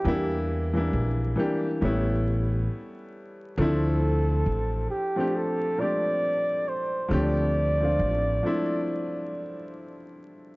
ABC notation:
X:1
M:4/4
L:1/16
Q:"Swing 16ths" 1/4=68
K:Dm
V:1 name="Flugelhorn"
G2 z12 z2 | A6 G2 A2 d4 c2 | d12 z4 |]
V:2 name="Upright piano"
[E,G,B,DE]3 [E,G,B,DE]3 [E,G,B,DG]2 [G,A,=B,^CE]8 | [F,A,CDE]6- [F,A,CDE] [F,A,CDG]3 [F,A,CDG]6 | [F,A,CDG]3 [F,A,CDF]3 [F,A,CDE]8 z2 |]
V:3 name="Upright bass" clef=bass
E,,4 B,,,2 z2 A,,,4 z4 | D,,4 A,,,2 z8 z2 | D,,4 A,,,2 z8 z2 |]